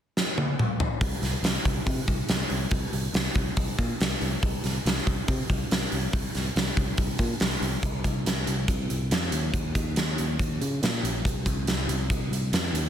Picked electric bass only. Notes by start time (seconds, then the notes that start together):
1.01 C2
1.22 C2
1.43 C2
1.65 C2
1.86 C3
2.08 C2
2.29 C2
2.51 C2
2.71 C2
2.92 C2
3.13 C2
3.35 C2
3.57 C2
3.79 A#2
4.00 C2
4.21 C2
4.43 C2
4.64 C2
4.85 C2
5.07 C2
5.28 C3
5.50 C2
5.72 C2
5.92 C2
6.13 C2
6.35 C2
6.56 C2
6.77 C2
6.98 C2
7.19 A#2
7.41 C2
7.61 C2
7.83 C2
8.05 C2
8.26 C2
8.48 C2
8.68 C2
8.90 C2
9.11 F2
9.32 D#2
9.53 D#2
9.75 D#2
9.98 D#2
10.19 D#2
10.39 D#2
10.61 C#3
10.82 A#2
11.03 A#1
11.25 C2
11.46 C2
11.68 C2
11.88 C2
12.10 C2
12.31 C2
12.52 F2
12.73 D#2